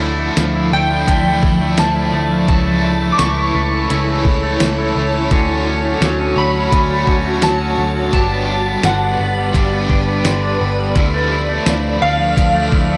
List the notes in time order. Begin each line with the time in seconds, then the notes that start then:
Already playing: D2 D3 F3 A3 D4 E4 D5 E5 A5
0.02 E4
0.20 A3
0.37 D2 F3, snare, closed hi-hat, tambourine
0.55 E4
0.71 D2 A3 D4 E4 G5
0.91 F3
1.05 D2 D3 F3 A3 E4, kick, closed hi-hat
1.10 D4 E4
1.26 A3
1.43 D2 E4, kick
1.61 A3
1.77 D2 F3 A5, snare, closed hi-hat, tambourine
1.96 E4
2.13 D2 A3
2.31 F3
2.47 C#2 C#3 E3 A3 E4 A4 C#5 A5, kick, closed hi-hat
2.51 C#4 E4
2.66 A3
2.84 E4
3.02 A3
3.12 D6
3.18 C#2 E3 C#6, snare, closed hi-hat, tambourine
3.37 E4
3.55 C#2 A3
3.72 E3
3.89 C#2 C#3 E3 A3 C#4 E4, closed hi-hat
4.08 A3
4.25 C#2 E4, kick
4.43 A3
4.60 C#2 E3, snare, closed hi-hat, tambourine
4.78 E4
4.95 C#2 A3 C#4 E4
5.14 E3
5.30 D2 D3 F#3 A3 C#4 F#4 F#5, kick, closed hi-hat
5.49 A3
5.67 C#4
5.84 A3
6.01 D2 F#3, snare, closed hi-hat, tambourine
6.20 C#4
6.36 D2 A3 C#4 F#4 B5
6.55 F#3
6.71 D2 D3 F#3 A3 C#4, kick, closed hi-hat
6.75 C#4 F#4
6.90 A3
7.07 D2 C#4, kick
7.25 A3
7.42 D2 F#3 A5, snare, closed hi-hat, tambourine
7.60 C#4
7.78 D2 A3
7.96 F#3
8.11 G1 G2 D3 G3 B3 D4 G4 B4 D5 A5 B5, kick, closed hi-hat
8.16 D4 G4
8.31 B3
8.49 D4
8.67 B3
8.83 G1 D3 F#5, snare, closed hi-hat, tambourine
9.02 D4
9.19 G1 B3
9.37 G3
9.52 G1 G2 D3 G3 B3 D4, kick, closed hi-hat
9.57 D4 G4
9.73 B3
9.90 G1 D4, kick
10.08 B3
10.25 G1 D3, snare, closed hi-hat, tambourine
10.43 D4
10.61 G1 B3
10.79 G3
10.95 D2 D3 F3 A3 D4 E4 A5, kick, closed hi-hat
11.14 A3
11.32 E4
11.49 A3
11.66 D2 F3, snare, closed hi-hat, tambourine
12.02 D2 A3 D4 F5
12.19 F3
12.37 D2 D3 F3 A3 D4, kick, closed hi-hat
12.55 A3
12.72 D2 E4, kick
12.90 A3